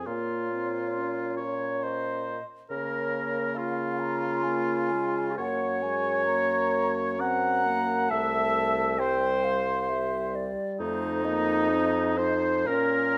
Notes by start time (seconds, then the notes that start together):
0.06 A#2 A#3 F4 C#5
0.52 C4
0.97 C#4
1.37 C#5
1.83 C5 D#5
2.70 C#3 A#3 A#4 C#5
3.55 F4 F5
4.00 A#5
4.43 A#3 G#5
4.92 G#3
5.37 F#2 A#3 C#5 F#5
5.82 G#3 G#5
6.25 A#3 A#5
7.19 C4 F#5 A#5
7.65 A#3
8.09 C2 A3 E5 A5
8.99 G3 C5 G5
9.44 F5
9.89 G3 E5
10.35 D5
10.80 F2 A3 D#4 C5
11.25 A#3 D#5
11.71 C4
12.17 D#4 C5
12.66 A#2 C#4 A#4 C#5